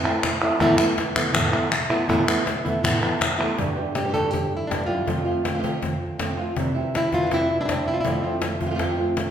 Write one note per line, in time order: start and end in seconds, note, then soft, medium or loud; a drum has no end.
0.05 0.23 A3 soft
0.05 0.24 C4 soft
0.05 0.23 E4 soft
0.05 clap medium
0.23 muted nylon-string guitar stroke medium
0.23 cajon bass medium
0.23 cajon slap loud
0.23 clap medium
0.42 0.61 A3 soft
0.42 0.61 C4 soft
0.42 0.60 E4 soft
0.42 clap medium
0.60 0.79 E2 medium
0.60 0.79 A2 medium
0.60 0.79 E3 medium
0.60 0.80 A3 medium
0.60 0.79 B3 medium
0.60 0.78 E4 medium
0.60 cajon bass loud
0.60 clap soft
0.78 0.96 E3 soft
0.78 0.97 A3 soft
0.78 0.98 B3 medium
0.78 0.97 E4 medium
0.78 clap medium
0.97 1.16 E3 soft
0.97 1.16 A3 soft
0.97 1.15 B3 medium
0.97 1.15 E4 medium
0.97 muted nylon-string guitar stroke medium
0.97 cajon slap loud
1.16 1.34 E3 soft
1.16 1.34 A3 soft
1.16 1.34 B3 soft
1.16 1.34 E4 soft
1.16 cajon bass medium
1.16 clap medium
1.33 1.52 E2 medium
1.33 1.52 A2 medium
1.33 1.52 E3 medium
1.33 1.52 A3 medium
1.33 1.51 B3 medium
1.33 1.51 E4 medium
1.33 muted nylon-string guitar stroke medium
1.33 cajon bass loud
1.33 clap medium
1.52 1.71 E3 soft
1.52 1.71 A3 medium
1.52 1.71 B3 medium
1.52 1.71 E4 medium
1.52 clap soft
1.71 muted nylon-string guitar stroke medium
1.71 cajon slap loud
1.71 clap medium
1.90 2.08 E3 soft
1.90 2.09 A3 soft
1.90 2.09 B3 soft
1.90 2.08 E4 soft
1.90 clap soft
2.08 2.27 E2 medium
2.08 2.27 A2 medium
2.08 2.28 E3 medium
2.08 2.28 A3 medium
2.08 2.27 B3 medium
2.08 2.26 E4 medium
2.08 cajon bass loud
2.27 2.44 E3 soft
2.27 2.45 A3 soft
2.27 2.46 B3 soft
2.27 2.46 E4 medium
2.27 clap medium
2.45 2.64 E3 soft
2.45 2.65 A3 soft
2.45 2.64 B3 medium
2.45 2.63 E4 medium
2.45 muted nylon-string guitar stroke medium
2.45 cajon slap loud
2.64 2.83 E3 soft
2.64 2.83 A3 soft
2.64 2.83 B3 soft
2.64 2.83 E4 soft
2.64 cajon bass medium
2.83 3.02 E2 medium
2.83 3.02 A2 medium
2.83 3.02 E3 medium
2.83 3.02 A3 medium
2.83 3.01 B3 medium
2.83 3.01 E4 medium
2.83 muted nylon-string guitar stroke medium
2.83 cajon bass loud
2.83 clap medium
3.02 3.20 E3 soft
3.02 3.21 A3 soft
3.02 3.21 B3 soft
3.02 3.20 E4 medium
3.02 clap soft
3.21 muted nylon-string guitar stroke medium
3.21 cajon bass medium
3.21 cajon slap loud
3.21 clap medium
3.39 3.58 E3 soft
3.39 3.58 A3 soft
3.39 3.58 B3 soft
3.39 3.58 E4 soft
3.39 clap soft
3.57 3.76 G2 medium
3.57 3.76 B2 medium
3.57 3.76 D3 medium
3.57 3.77 G3 medium
3.57 3.76 B3 medium
3.57 3.75 G4 medium
3.57 cajon bass loud
3.76 3.96 D3 soft
3.76 3.95 G3 soft
3.76 3.94 B3 soft
3.76 3.94 G4 soft
3.95 4.03 D3 soft
3.95 4.04 G3 soft
3.95 4.04 B3 soft
3.95 4.04 G4 soft
3.95 cajon slap loud
4.04 4.07 B2 soft
4.04 4.08 D3 soft
4.04 4.08 G3 soft
4.04 4.08 B3 soft
4.04 4.09 G4 soft
4.09 4.12 B2 soft
4.09 4.13 D3 medium
4.09 4.13 G3 medium
4.09 4.13 B3 medium
4.09 4.13 G4 medium
4.13 4.31 G2 medium
4.13 4.31 B2 medium
4.13 4.31 D3 medium
4.13 4.32 G3 medium
4.13 4.32 B3 medium
4.13 4.32 G4 medium
4.13 4.31 A4 loud
4.13 cajon bass medium
4.31 4.56 G4 loud
4.31 muted nylon-string guitar stroke medium
4.31 cajon bass medium
4.57 5.05 E4 medium
4.67 4.89 G2 medium
4.67 4.88 D3 soft
4.67 4.87 G3 soft
4.67 4.86 B3 medium
4.67 4.86 D4 medium
4.67 4.86 G4 soft
4.67 cajon bass medium
4.67 cajon slap medium
4.86 5.06 F#2 medium
4.86 5.07 D3 soft
4.86 5.07 G3 soft
4.86 5.06 B3 soft
4.86 5.81 F4 medium
4.86 5.06 G4 soft
5.06 5.25 F2 medium
5.06 5.25 C3 medium
5.06 5.25 F3 medium
5.06 5.25 A3 medium
5.06 5.25 C4 medium
5.06 5.24 F4 medium
5.06 cajon bass loud
5.25 5.45 F3 soft
5.25 5.44 A3 soft
5.25 5.43 C4 soft
5.25 5.43 F4 soft
5.25 cajon slap soft
5.44 5.53 F3 soft
5.44 5.53 A3 soft
5.44 5.54 C4 soft
5.44 5.54 F4 soft
5.44 cajon slap loud
5.54 5.57 C3 soft
5.54 5.58 F3 soft
5.54 5.58 A3 soft
5.54 5.58 C4 soft
5.54 5.59 F4 soft
5.58 5.62 C3 medium
5.58 5.62 F3 medium
5.58 5.62 A3 medium
5.58 5.63 C4 medium
5.58 5.63 F4 medium
5.63 5.80 F2 medium
5.63 5.80 C3 medium
5.63 5.81 F3 medium
5.63 5.81 A3 medium
5.63 5.81 C4 medium
5.63 5.81 F4 medium
5.63 cajon bass medium
5.82 7.14 C4 medium
5.82 muted nylon-string guitar stroke medium
5.82 cajon bass loud
6.19 6.37 F3 medium
6.19 6.37 A3 soft
6.19 6.37 C4 medium
6.19 6.36 F4 medium
6.19 cajon bass medium
6.19 cajon slap loud
6.37 6.56 F3 soft
6.37 6.56 A3 soft
6.37 6.56 C4 soft
6.37 6.56 F4 soft
6.56 6.74 C3 medium
6.56 6.75 E3 medium
6.56 6.75 G3 medium
6.56 6.75 C4 medium
6.56 6.73 E4 medium
6.56 cajon bass loud
6.74 6.93 G3 soft
6.74 6.93 C4 soft
6.74 6.93 E4 soft
6.94 7.33 E4 loud
6.94 muted nylon-string guitar stroke medium
6.94 cajon slap loud
7.12 7.16 G3 soft
7.12 7.17 C4 soft
7.12 7.17 E4 soft
7.12 7.32 F4 loud
7.12 cajon bass medium
7.17 7.20 E3 soft
7.17 7.21 G3 soft
7.17 7.21 C4 soft
7.17 7.22 E4 soft
7.21 7.25 E3 soft
7.21 7.25 G3 soft
7.21 7.26 C4 soft
7.21 7.26 E4 soft
7.26 7.30 E3 medium
7.26 7.30 G3 medium
7.26 7.30 C4 medium
7.26 7.31 E4 medium
7.31 7.49 C3 medium
7.31 7.49 E3 medium
7.31 7.49 G3 medium
7.31 7.49 C4 medium
7.31 7.48 E4 medium
7.31 cajon bass loud
7.31 cajon slap soft
7.49 7.67 G3 soft
7.49 7.67 C4 soft
7.49 7.67 E4 soft
7.49 cajon slap soft
7.61 7.64 D4 medium
7.61 7.87 E4 medium
7.65 7.93 D4 medium
7.65 muted nylon-string guitar stroke medium
7.65 cajon bass medium
7.65 cajon slap loud
7.71 8.04 C4 medium
7.86 8.05 G3 soft
7.86 8.05 C4 soft
7.86 8.04 E4 soft
7.94 8.01 F4 medium
8.01 8.23 F2 medium
8.01 8.99 E4 loud
8.05 8.23 C3 medium
8.05 8.23 F3 medium
8.05 8.23 A3 medium
8.05 8.23 C4 medium
8.05 8.22 F4 medium
8.05 cajon bass loud
8.23 8.41 F3 soft
8.23 8.41 A3 soft
8.23 8.42 C4 medium
8.23 8.42 F4 medium
8.23 cajon slap soft
8.42 muted nylon-string guitar stroke medium
8.42 cajon slap loud
8.60 8.65 F3 soft
8.60 8.65 A3 soft
8.60 8.65 C4 soft
8.60 8.65 F4 soft
8.60 cajon bass medium
8.66 8.69 C3 soft
8.66 8.69 F3 soft
8.66 8.70 A3 soft
8.66 8.70 C4 soft
8.66 8.70 F4 soft
8.70 8.73 C3 soft
8.70 8.74 F3 medium
8.70 8.74 A3 medium
8.70 8.74 C4 medium
8.70 8.75 F4 medium
8.74 8.78 C3 medium
8.74 8.79 F3 medium
8.74 8.79 A3 medium
8.74 8.79 C4 medium
8.74 8.79 F4 medium
8.79 8.97 F2 medium
8.79 8.98 C3 medium
8.79 8.98 F3 medium
8.79 8.98 A3 medium
8.79 8.97 C4 medium
8.79 8.96 F4 medium
8.79 cajon bass loud
8.79 cajon slap soft
8.97 9.16 F3 soft
8.97 9.16 A3 soft
8.97 9.16 C4 soft
8.97 9.16 F4 soft
8.97 cajon slap soft
9.17 9.31 A3 soft
9.17 muted nylon-string guitar stroke medium
9.17 cajon slap loud